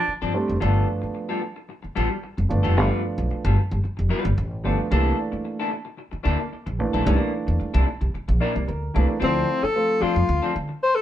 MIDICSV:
0, 0, Header, 1, 8, 480
1, 0, Start_track
1, 0, Tempo, 537634
1, 551, Time_signature, 4, 2, 24, 8
1, 9836, End_track
2, 0, Start_track
2, 0, Title_t, "Alto saxophone"
2, 0, Program_c, 0, 65
2, 8247, Note_on_c, 0, 60, 93
2, 8609, Note_on_c, 0, 69, 104
2, 8623, Note_off_c, 0, 60, 0
2, 8951, Note_on_c, 0, 65, 86
2, 8964, Note_off_c, 0, 69, 0
2, 9430, Note_off_c, 0, 65, 0
2, 9670, Note_on_c, 0, 72, 99
2, 9779, Note_on_c, 0, 69, 92
2, 9792, Note_off_c, 0, 72, 0
2, 9836, Note_off_c, 0, 69, 0
2, 9836, End_track
3, 0, Start_track
3, 0, Title_t, "Baritone saxophone"
3, 0, Program_c, 1, 67
3, 0, Note_on_c, 1, 62, 98
3, 117, Note_off_c, 1, 62, 0
3, 9836, End_track
4, 0, Start_track
4, 0, Title_t, "Clean electric guitar"
4, 0, Program_c, 2, 27
4, 194, Note_on_c, 2, 69, 88
4, 195, Note_on_c, 2, 62, 79
4, 202, Note_on_c, 2, 60, 70
4, 204, Note_on_c, 2, 53, 64
4, 299, Note_off_c, 2, 53, 0
4, 300, Note_off_c, 2, 60, 0
4, 307, Note_off_c, 2, 62, 0
4, 307, Note_off_c, 2, 69, 0
4, 539, Note_on_c, 2, 59, 80
4, 541, Note_on_c, 2, 55, 77
4, 542, Note_on_c, 2, 65, 84
4, 546, Note_on_c, 2, 69, 85
4, 767, Note_off_c, 2, 59, 0
4, 768, Note_off_c, 2, 55, 0
4, 768, Note_off_c, 2, 65, 0
4, 770, Note_off_c, 2, 69, 0
4, 1151, Note_on_c, 2, 69, 73
4, 1153, Note_on_c, 2, 65, 74
4, 1158, Note_on_c, 2, 59, 62
4, 1160, Note_on_c, 2, 55, 60
4, 1250, Note_off_c, 2, 55, 0
4, 1255, Note_off_c, 2, 59, 0
4, 1257, Note_off_c, 2, 65, 0
4, 1258, Note_off_c, 2, 69, 0
4, 1745, Note_on_c, 2, 55, 84
4, 1746, Note_on_c, 2, 59, 93
4, 1750, Note_on_c, 2, 69, 97
4, 1752, Note_on_c, 2, 65, 103
4, 1857, Note_off_c, 2, 69, 0
4, 1865, Note_off_c, 2, 59, 0
4, 1866, Note_off_c, 2, 65, 0
4, 1927, Note_off_c, 2, 55, 0
4, 2349, Note_on_c, 2, 69, 86
4, 2355, Note_on_c, 2, 59, 75
4, 2355, Note_on_c, 2, 65, 91
4, 2358, Note_on_c, 2, 55, 71
4, 2458, Note_off_c, 2, 55, 0
4, 2462, Note_off_c, 2, 59, 0
4, 2467, Note_off_c, 2, 65, 0
4, 2469, Note_on_c, 2, 55, 79
4, 2470, Note_off_c, 2, 69, 0
4, 2472, Note_on_c, 2, 59, 93
4, 2474, Note_on_c, 2, 71, 93
4, 2478, Note_on_c, 2, 65, 90
4, 2691, Note_off_c, 2, 55, 0
4, 2693, Note_off_c, 2, 59, 0
4, 2694, Note_off_c, 2, 71, 0
4, 2696, Note_off_c, 2, 65, 0
4, 3078, Note_on_c, 2, 69, 75
4, 3082, Note_on_c, 2, 65, 70
4, 3084, Note_on_c, 2, 59, 65
4, 3093, Note_on_c, 2, 55, 69
4, 3183, Note_off_c, 2, 59, 0
4, 3184, Note_off_c, 2, 55, 0
4, 3185, Note_off_c, 2, 65, 0
4, 3189, Note_off_c, 2, 69, 0
4, 3654, Note_on_c, 2, 55, 81
4, 3659, Note_on_c, 2, 59, 92
4, 3660, Note_on_c, 2, 65, 105
4, 3665, Note_on_c, 2, 71, 105
4, 3784, Note_off_c, 2, 65, 0
4, 3786, Note_off_c, 2, 59, 0
4, 3786, Note_off_c, 2, 71, 0
4, 3845, Note_off_c, 2, 55, 0
4, 4143, Note_on_c, 2, 55, 51
4, 4148, Note_on_c, 2, 59, 56
4, 4152, Note_on_c, 2, 65, 64
4, 4153, Note_on_c, 2, 69, 59
4, 4259, Note_off_c, 2, 65, 0
4, 4261, Note_off_c, 2, 69, 0
4, 4265, Note_off_c, 2, 59, 0
4, 4290, Note_off_c, 2, 55, 0
4, 4384, Note_on_c, 2, 58, 92
4, 4391, Note_on_c, 2, 62, 92
4, 4395, Note_on_c, 2, 64, 99
4, 4396, Note_on_c, 2, 69, 101
4, 4609, Note_off_c, 2, 58, 0
4, 4612, Note_off_c, 2, 62, 0
4, 4614, Note_off_c, 2, 64, 0
4, 4615, Note_off_c, 2, 69, 0
4, 4995, Note_on_c, 2, 64, 72
4, 4995, Note_on_c, 2, 69, 85
4, 5000, Note_on_c, 2, 62, 68
4, 5004, Note_on_c, 2, 58, 67
4, 5086, Note_off_c, 2, 58, 0
4, 5091, Note_off_c, 2, 64, 0
4, 5092, Note_off_c, 2, 69, 0
4, 5093, Note_off_c, 2, 62, 0
4, 5566, Note_on_c, 2, 58, 90
4, 5568, Note_on_c, 2, 62, 105
4, 5573, Note_on_c, 2, 64, 109
4, 5577, Note_on_c, 2, 69, 108
4, 5698, Note_off_c, 2, 69, 0
4, 5702, Note_off_c, 2, 62, 0
4, 5702, Note_off_c, 2, 64, 0
4, 5757, Note_off_c, 2, 58, 0
4, 6190, Note_on_c, 2, 69, 97
4, 6196, Note_on_c, 2, 64, 79
4, 6197, Note_on_c, 2, 62, 67
4, 6199, Note_on_c, 2, 58, 69
4, 6288, Note_off_c, 2, 58, 0
4, 6293, Note_off_c, 2, 62, 0
4, 6294, Note_off_c, 2, 64, 0
4, 6299, Note_on_c, 2, 57, 86
4, 6303, Note_off_c, 2, 69, 0
4, 6303, Note_on_c, 2, 61, 81
4, 6304, Note_on_c, 2, 63, 85
4, 6307, Note_on_c, 2, 70, 90
4, 6397, Note_off_c, 2, 57, 0
4, 6397, Note_on_c, 2, 58, 86
4, 6401, Note_off_c, 2, 61, 0
4, 6401, Note_on_c, 2, 62, 81
4, 6403, Note_off_c, 2, 63, 0
4, 6403, Note_on_c, 2, 64, 85
4, 6526, Note_off_c, 2, 58, 0
4, 6529, Note_off_c, 2, 62, 0
4, 6529, Note_off_c, 2, 64, 0
4, 6530, Note_off_c, 2, 70, 0
4, 6909, Note_on_c, 2, 69, 70
4, 6910, Note_on_c, 2, 64, 83
4, 6919, Note_on_c, 2, 62, 75
4, 6922, Note_on_c, 2, 58, 58
4, 7010, Note_off_c, 2, 58, 0
4, 7014, Note_off_c, 2, 64, 0
4, 7015, Note_off_c, 2, 62, 0
4, 7016, Note_off_c, 2, 69, 0
4, 7504, Note_on_c, 2, 58, 89
4, 7507, Note_on_c, 2, 62, 94
4, 7514, Note_on_c, 2, 64, 82
4, 7515, Note_on_c, 2, 70, 100
4, 7623, Note_off_c, 2, 64, 0
4, 7626, Note_off_c, 2, 70, 0
4, 7628, Note_off_c, 2, 62, 0
4, 7686, Note_off_c, 2, 58, 0
4, 7987, Note_on_c, 2, 58, 57
4, 7988, Note_on_c, 2, 62, 65
4, 7995, Note_on_c, 2, 64, 66
4, 7997, Note_on_c, 2, 69, 61
4, 8099, Note_off_c, 2, 69, 0
4, 8102, Note_off_c, 2, 64, 0
4, 8103, Note_off_c, 2, 62, 0
4, 8132, Note_off_c, 2, 58, 0
4, 8211, Note_on_c, 2, 53, 79
4, 8213, Note_on_c, 2, 60, 88
4, 8217, Note_on_c, 2, 69, 89
4, 8219, Note_on_c, 2, 62, 96
4, 8442, Note_off_c, 2, 53, 0
4, 8443, Note_off_c, 2, 60, 0
4, 8445, Note_off_c, 2, 69, 0
4, 8446, Note_off_c, 2, 62, 0
4, 8929, Note_on_c, 2, 53, 84
4, 8937, Note_on_c, 2, 60, 93
4, 8940, Note_on_c, 2, 62, 97
4, 8945, Note_on_c, 2, 69, 93
4, 9055, Note_off_c, 2, 69, 0
4, 9058, Note_off_c, 2, 62, 0
4, 9064, Note_off_c, 2, 60, 0
4, 9119, Note_off_c, 2, 53, 0
4, 9305, Note_on_c, 2, 69, 77
4, 9311, Note_on_c, 2, 62, 72
4, 9313, Note_on_c, 2, 60, 73
4, 9315, Note_on_c, 2, 53, 68
4, 9398, Note_off_c, 2, 53, 0
4, 9406, Note_off_c, 2, 60, 0
4, 9409, Note_off_c, 2, 62, 0
4, 9409, Note_off_c, 2, 69, 0
4, 9836, End_track
5, 0, Start_track
5, 0, Title_t, "Upright piano"
5, 0, Program_c, 3, 0
5, 298, Note_on_c, 3, 55, 91
5, 300, Note_on_c, 3, 57, 81
5, 306, Note_on_c, 3, 60, 79
5, 312, Note_on_c, 3, 62, 93
5, 486, Note_off_c, 3, 55, 0
5, 487, Note_off_c, 3, 57, 0
5, 490, Note_off_c, 3, 60, 0
5, 493, Note_off_c, 3, 62, 0
5, 538, Note_on_c, 3, 53, 71
5, 545, Note_on_c, 3, 57, 66
5, 549, Note_on_c, 3, 59, 74
5, 556, Note_on_c, 3, 62, 95
5, 1255, Note_off_c, 3, 53, 0
5, 1258, Note_off_c, 3, 57, 0
5, 1261, Note_off_c, 3, 59, 0
5, 1264, Note_off_c, 3, 62, 0
5, 2221, Note_on_c, 3, 53, 73
5, 2227, Note_on_c, 3, 57, 75
5, 2230, Note_on_c, 3, 59, 73
5, 2235, Note_on_c, 3, 62, 90
5, 2407, Note_off_c, 3, 53, 0
5, 2410, Note_off_c, 3, 57, 0
5, 2412, Note_off_c, 3, 59, 0
5, 2414, Note_off_c, 3, 62, 0
5, 2467, Note_on_c, 3, 53, 86
5, 2472, Note_on_c, 3, 57, 66
5, 2475, Note_on_c, 3, 59, 64
5, 2483, Note_on_c, 3, 62, 90
5, 3179, Note_off_c, 3, 53, 0
5, 3182, Note_off_c, 3, 57, 0
5, 3184, Note_off_c, 3, 59, 0
5, 3187, Note_off_c, 3, 62, 0
5, 4140, Note_on_c, 3, 53, 77
5, 4146, Note_on_c, 3, 57, 75
5, 4151, Note_on_c, 3, 59, 79
5, 4156, Note_on_c, 3, 62, 92
5, 4327, Note_off_c, 3, 53, 0
5, 4329, Note_off_c, 3, 57, 0
5, 4332, Note_off_c, 3, 59, 0
5, 4334, Note_off_c, 3, 62, 0
5, 4376, Note_on_c, 3, 52, 80
5, 4381, Note_on_c, 3, 57, 71
5, 4386, Note_on_c, 3, 58, 73
5, 4391, Note_on_c, 3, 62, 93
5, 5094, Note_off_c, 3, 52, 0
5, 5096, Note_off_c, 3, 57, 0
5, 5099, Note_off_c, 3, 58, 0
5, 5102, Note_off_c, 3, 62, 0
5, 6060, Note_on_c, 3, 52, 84
5, 6064, Note_on_c, 3, 57, 76
5, 6069, Note_on_c, 3, 58, 75
5, 6075, Note_on_c, 3, 62, 88
5, 6246, Note_off_c, 3, 52, 0
5, 6248, Note_off_c, 3, 57, 0
5, 6251, Note_off_c, 3, 58, 0
5, 6254, Note_off_c, 3, 62, 0
5, 6299, Note_on_c, 3, 52, 82
5, 6302, Note_on_c, 3, 57, 70
5, 6309, Note_on_c, 3, 58, 73
5, 6314, Note_on_c, 3, 62, 95
5, 7015, Note_off_c, 3, 52, 0
5, 7017, Note_off_c, 3, 57, 0
5, 7020, Note_off_c, 3, 58, 0
5, 7023, Note_off_c, 3, 62, 0
5, 7509, Note_on_c, 3, 74, 74
5, 7733, Note_off_c, 3, 74, 0
5, 7749, Note_on_c, 3, 70, 77
5, 7973, Note_off_c, 3, 70, 0
5, 7980, Note_on_c, 3, 52, 86
5, 7988, Note_on_c, 3, 57, 79
5, 7988, Note_on_c, 3, 70, 73
5, 7992, Note_on_c, 3, 58, 76
5, 7998, Note_on_c, 3, 62, 89
5, 8166, Note_off_c, 3, 52, 0
5, 8170, Note_off_c, 3, 57, 0
5, 8172, Note_off_c, 3, 58, 0
5, 8175, Note_off_c, 3, 62, 0
5, 8212, Note_off_c, 3, 70, 0
5, 8219, Note_on_c, 3, 53, 70
5, 8225, Note_on_c, 3, 57, 62
5, 8229, Note_on_c, 3, 60, 61
5, 8236, Note_on_c, 3, 64, 78
5, 8586, Note_off_c, 3, 53, 0
5, 8589, Note_off_c, 3, 57, 0
5, 8591, Note_off_c, 3, 60, 0
5, 8595, Note_off_c, 3, 64, 0
5, 8698, Note_on_c, 3, 53, 73
5, 8702, Note_on_c, 3, 57, 66
5, 8708, Note_on_c, 3, 60, 62
5, 8714, Note_on_c, 3, 65, 77
5, 9414, Note_off_c, 3, 53, 0
5, 9416, Note_off_c, 3, 57, 0
5, 9419, Note_off_c, 3, 60, 0
5, 9422, Note_off_c, 3, 65, 0
5, 9836, End_track
6, 0, Start_track
6, 0, Title_t, "Upright bass"
6, 0, Program_c, 4, 32
6, 199, Note_on_c, 4, 43, 73
6, 281, Note_off_c, 4, 43, 0
6, 442, Note_on_c, 4, 29, 79
6, 522, Note_off_c, 4, 29, 0
6, 554, Note_on_c, 4, 31, 93
6, 727, Note_off_c, 4, 31, 0
6, 1757, Note_on_c, 4, 33, 87
6, 1847, Note_off_c, 4, 33, 0
6, 2125, Note_on_c, 4, 29, 81
6, 2204, Note_off_c, 4, 29, 0
6, 2237, Note_on_c, 4, 31, 87
6, 2327, Note_off_c, 4, 31, 0
6, 2362, Note_on_c, 4, 29, 84
6, 2474, Note_off_c, 4, 29, 0
6, 2474, Note_on_c, 4, 31, 102
6, 2565, Note_off_c, 4, 31, 0
6, 2838, Note_on_c, 4, 35, 86
6, 2920, Note_off_c, 4, 35, 0
6, 3077, Note_on_c, 4, 31, 103
6, 3159, Note_off_c, 4, 31, 0
6, 3317, Note_on_c, 4, 31, 91
6, 3399, Note_off_c, 4, 31, 0
6, 3560, Note_on_c, 4, 29, 82
6, 3641, Note_off_c, 4, 29, 0
6, 3794, Note_on_c, 4, 31, 103
6, 3877, Note_off_c, 4, 31, 0
6, 3908, Note_on_c, 4, 33, 88
6, 4149, Note_off_c, 4, 33, 0
6, 4149, Note_on_c, 4, 31, 95
6, 4242, Note_off_c, 4, 31, 0
6, 4389, Note_on_c, 4, 36, 104
6, 4564, Note_off_c, 4, 36, 0
6, 5584, Note_on_c, 4, 38, 89
6, 5679, Note_off_c, 4, 38, 0
6, 5952, Note_on_c, 4, 34, 78
6, 6064, Note_off_c, 4, 34, 0
6, 6064, Note_on_c, 4, 33, 94
6, 6158, Note_off_c, 4, 33, 0
6, 6196, Note_on_c, 4, 34, 81
6, 6278, Note_off_c, 4, 34, 0
6, 6308, Note_on_c, 4, 36, 114
6, 6401, Note_off_c, 4, 36, 0
6, 6677, Note_on_c, 4, 40, 82
6, 6759, Note_off_c, 4, 40, 0
6, 6913, Note_on_c, 4, 36, 106
6, 6996, Note_off_c, 4, 36, 0
6, 7154, Note_on_c, 4, 36, 78
6, 7237, Note_off_c, 4, 36, 0
6, 7398, Note_on_c, 4, 34, 91
6, 7479, Note_off_c, 4, 34, 0
6, 7641, Note_on_c, 4, 36, 80
6, 7721, Note_off_c, 4, 36, 0
6, 7754, Note_on_c, 4, 38, 72
6, 7927, Note_off_c, 4, 38, 0
6, 7998, Note_on_c, 4, 36, 93
6, 8087, Note_off_c, 4, 36, 0
6, 8231, Note_on_c, 4, 38, 102
6, 8404, Note_off_c, 4, 38, 0
6, 9072, Note_on_c, 4, 41, 91
6, 9155, Note_off_c, 4, 41, 0
6, 9186, Note_on_c, 4, 38, 98
6, 9279, Note_off_c, 4, 38, 0
6, 9426, Note_on_c, 4, 50, 81
6, 9519, Note_off_c, 4, 50, 0
6, 9836, End_track
7, 0, Start_track
7, 0, Title_t, "Muted clean electric guitar strokes"
7, 64, Note_on_c, 9, 29, 35
7, 153, Note_off_c, 9, 29, 0
7, 310, Note_on_c, 9, 29, 32
7, 399, Note_off_c, 9, 29, 0
7, 432, Note_on_c, 9, 29, 42
7, 521, Note_off_c, 9, 29, 0
7, 908, Note_on_c, 9, 29, 44
7, 997, Note_off_c, 9, 29, 0
7, 1018, Note_on_c, 9, 29, 31
7, 1108, Note_off_c, 9, 29, 0
7, 1261, Note_on_c, 9, 29, 39
7, 1350, Note_off_c, 9, 29, 0
7, 1394, Note_on_c, 9, 29, 44
7, 1484, Note_off_c, 9, 29, 0
7, 1507, Note_on_c, 9, 29, 45
7, 1596, Note_off_c, 9, 29, 0
7, 1630, Note_on_c, 9, 29, 40
7, 1719, Note_off_c, 9, 29, 0
7, 1868, Note_on_c, 9, 29, 50
7, 1957, Note_off_c, 9, 29, 0
7, 1992, Note_on_c, 9, 29, 41
7, 2081, Note_off_c, 9, 29, 0
7, 2121, Note_on_c, 9, 29, 39
7, 2210, Note_off_c, 9, 29, 0
7, 2844, Note_on_c, 9, 29, 46
7, 2933, Note_off_c, 9, 29, 0
7, 2955, Note_on_c, 9, 29, 36
7, 3044, Note_off_c, 9, 29, 0
7, 3193, Note_on_c, 9, 29, 38
7, 3283, Note_off_c, 9, 29, 0
7, 3318, Note_on_c, 9, 29, 43
7, 3407, Note_off_c, 9, 29, 0
7, 3426, Note_on_c, 9, 29, 32
7, 3516, Note_off_c, 9, 29, 0
7, 3544, Note_on_c, 9, 29, 41
7, 3634, Note_off_c, 9, 29, 0
7, 3790, Note_on_c, 9, 29, 45
7, 3879, Note_off_c, 9, 29, 0
7, 3906, Note_on_c, 9, 29, 34
7, 3995, Note_off_c, 9, 29, 0
7, 4270, Note_on_c, 9, 29, 44
7, 4359, Note_off_c, 9, 29, 0
7, 4750, Note_on_c, 9, 29, 53
7, 4840, Note_off_c, 9, 29, 0
7, 4862, Note_on_c, 9, 29, 40
7, 4952, Note_off_c, 9, 29, 0
7, 5097, Note_on_c, 9, 29, 49
7, 5186, Note_off_c, 9, 29, 0
7, 5223, Note_on_c, 9, 29, 48
7, 5313, Note_off_c, 9, 29, 0
7, 5334, Note_on_c, 9, 29, 37
7, 5423, Note_off_c, 9, 29, 0
7, 5460, Note_on_c, 9, 29, 52
7, 5549, Note_off_c, 9, 29, 0
7, 5708, Note_on_c, 9, 29, 44
7, 5798, Note_off_c, 9, 29, 0
7, 5824, Note_on_c, 9, 29, 35
7, 5913, Note_off_c, 9, 29, 0
7, 5949, Note_on_c, 9, 29, 48
7, 6039, Note_off_c, 9, 29, 0
7, 6669, Note_on_c, 9, 29, 41
7, 6758, Note_off_c, 9, 29, 0
7, 6783, Note_on_c, 9, 29, 46
7, 6872, Note_off_c, 9, 29, 0
7, 7021, Note_on_c, 9, 29, 52
7, 7110, Note_off_c, 9, 29, 0
7, 7150, Note_on_c, 9, 29, 50
7, 7239, Note_off_c, 9, 29, 0
7, 7271, Note_on_c, 9, 29, 38
7, 7360, Note_off_c, 9, 29, 0
7, 7393, Note_on_c, 9, 29, 42
7, 7482, Note_off_c, 9, 29, 0
7, 7630, Note_on_c, 9, 29, 56
7, 7719, Note_off_c, 9, 29, 0
7, 7746, Note_on_c, 9, 29, 39
7, 7835, Note_off_c, 9, 29, 0
7, 8110, Note_on_c, 9, 29, 54
7, 8199, Note_off_c, 9, 29, 0
7, 8581, Note_on_c, 9, 29, 42
7, 8671, Note_off_c, 9, 29, 0
7, 8704, Note_on_c, 9, 29, 42
7, 8793, Note_off_c, 9, 29, 0
7, 8823, Note_on_c, 9, 29, 41
7, 8913, Note_off_c, 9, 29, 0
7, 9066, Note_on_c, 9, 29, 52
7, 9155, Note_off_c, 9, 29, 0
7, 9185, Note_on_c, 9, 29, 43
7, 9275, Note_off_c, 9, 29, 0
7, 9409, Note_on_c, 9, 29, 43
7, 9498, Note_off_c, 9, 29, 0
7, 9543, Note_on_c, 9, 29, 41
7, 9632, Note_off_c, 9, 29, 0
7, 9790, Note_on_c, 9, 29, 50
7, 9836, Note_off_c, 9, 29, 0
7, 9836, End_track
8, 0, Start_track
8, 0, Title_t, "Muted upright bass strokes"
8, 72, Note_on_c, 9, 29, 44
8, 162, Note_off_c, 9, 29, 0
8, 923, Note_on_c, 9, 29, 44
8, 1012, Note_off_c, 9, 29, 0
8, 1646, Note_on_c, 9, 29, 48
8, 1735, Note_off_c, 9, 29, 0
8, 2949, Note_on_c, 9, 29, 50
8, 3039, Note_off_c, 9, 29, 0
8, 3435, Note_on_c, 9, 29, 50
8, 3525, Note_off_c, 9, 29, 0
8, 4757, Note_on_c, 9, 29, 50
8, 4847, Note_off_c, 9, 29, 0
8, 5470, Note_on_c, 9, 29, 49
8, 5559, Note_off_c, 9, 29, 0
8, 6791, Note_on_c, 9, 29, 51
8, 6880, Note_off_c, 9, 29, 0
8, 7274, Note_on_c, 9, 29, 51
8, 7364, Note_off_c, 9, 29, 0
8, 8599, Note_on_c, 9, 29, 44
8, 8688, Note_off_c, 9, 29, 0
8, 8946, Note_on_c, 9, 29, 48
8, 9036, Note_off_c, 9, 29, 0
8, 9836, End_track
0, 0, End_of_file